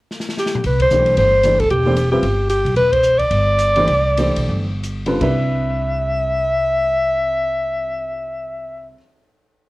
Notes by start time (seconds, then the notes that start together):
0.11 snare
0.20 snare
0.29 snare
0.37 G4, snare
0.46 snare
0.55 mid tom
0.64 C2 B4, ride
0.80 C5, kick, ride
0.90 B1 E3 A3 D4 G4 C5, hi-hat pedal
1.06 ride
1.17 G1 C5, ride
1.43 E3 A3 D4 G4 D5, hi-hat pedal, ride
1.60 A4, kick, ride
1.70 E1 G4, ride
1.86 E3 A3 D4 G4 C5
1.97 hi-hat pedal, ride
2.12 G3 C4 F4 G4 B4 E5
2.23 G1, ride
2.50 G4, hi-hat pedal, ride
2.65 B1, ride
2.76 E1 B4, ride
2.93 C5, kick, ride
3.03 hi-hat pedal
3.19 D5, kick, ride
3.31 G1, ride
3.59 hi-hat pedal, ride
3.76 E3 A3 D4 G4 C5, ride
3.87 C2, ride
4.17 E3 A3 D4 G4 C5, hi-hat pedal, ride
4.36 B1, ride
4.49 G1
4.83 hi-hat pedal, ride
5.06 D3 G3 C4 F4 B4, ride
5.20 C2 C3 G3 D4 E4 B4 E5, kick, crash
5.44 cymbal swell